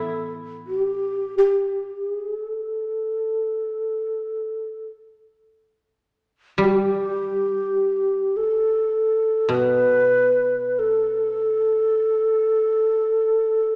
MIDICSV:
0, 0, Header, 1, 3, 480
1, 0, Start_track
1, 0, Tempo, 500000
1, 13206, End_track
2, 0, Start_track
2, 0, Title_t, "Shakuhachi"
2, 0, Program_c, 0, 77
2, 0, Note_on_c, 0, 69, 56
2, 297, Note_off_c, 0, 69, 0
2, 638, Note_on_c, 0, 67, 48
2, 1299, Note_off_c, 0, 67, 0
2, 1321, Note_on_c, 0, 67, 47
2, 1916, Note_off_c, 0, 67, 0
2, 1916, Note_on_c, 0, 68, 47
2, 2300, Note_off_c, 0, 68, 0
2, 2300, Note_on_c, 0, 69, 47
2, 4647, Note_off_c, 0, 69, 0
2, 6354, Note_on_c, 0, 67, 61
2, 8029, Note_on_c, 0, 69, 55
2, 8043, Note_off_c, 0, 67, 0
2, 9119, Note_on_c, 0, 71, 71
2, 9133, Note_off_c, 0, 69, 0
2, 10354, Note_on_c, 0, 69, 53
2, 10368, Note_off_c, 0, 71, 0
2, 13206, Note_off_c, 0, 69, 0
2, 13206, End_track
3, 0, Start_track
3, 0, Title_t, "Koto"
3, 0, Program_c, 1, 107
3, 0, Note_on_c, 1, 45, 35
3, 0, Note_on_c, 1, 52, 27
3, 0, Note_on_c, 1, 57, 29
3, 0, Note_on_c, 1, 59, 26
3, 0, Note_on_c, 1, 64, 27
3, 1175, Note_off_c, 1, 52, 0
3, 1457, Note_off_c, 1, 57, 0
3, 1757, Note_off_c, 1, 59, 0
3, 1798, Note_off_c, 1, 45, 0
3, 2043, Note_off_c, 1, 64, 0
3, 6316, Note_on_c, 1, 55, 42
3, 9107, Note_on_c, 1, 47, 34
3, 9561, Note_off_c, 1, 55, 0
3, 12352, Note_off_c, 1, 47, 0
3, 13206, End_track
0, 0, End_of_file